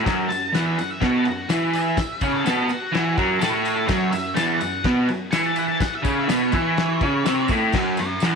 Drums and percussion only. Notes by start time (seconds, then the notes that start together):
0.06 kick, snare, ride, tambourine
0.30 ride, tambourine
0.54 snare, ride, tambourine
0.79 ride, tambourine
1.02 kick, snare, ride
1.25 ride, tambourine
1.49 snare, ride, tambourine
1.73 ride, tambourine
1.97 kick, snare, ride, tambourine
2.21 kick, ride, tambourine
2.46 snare, ride, tambourine
2.69 ride, tambourine
2.95 snare, ride
3.17 kick, ride, tambourine
3.41 snare, ride, tambourine
3.65 ride, tambourine
3.88 kick, snare, ride, tambourine
4.13 ride, tambourine
4.36 snare, ride, tambourine
4.61 ride, tambourine
4.84 kick, snare, ride
5.09 ride, tambourine
5.32 snare, ride, tambourine
5.56 ride, tambourine
5.80 kick, snare, ride, tambourine
6.05 kick, ride, tambourine
6.29 snare, ride, tambourine
6.52 kick, ride, tambourine
6.77 snare, ride, tambourine
7.01 kick, ride, tambourine
7.26 snare, ride, tambourine
7.48 kick, ride, tambourine
7.72 kick, snare, tambourine, crash
7.97 ride, tambourine
8.20 snare, ride, tambourine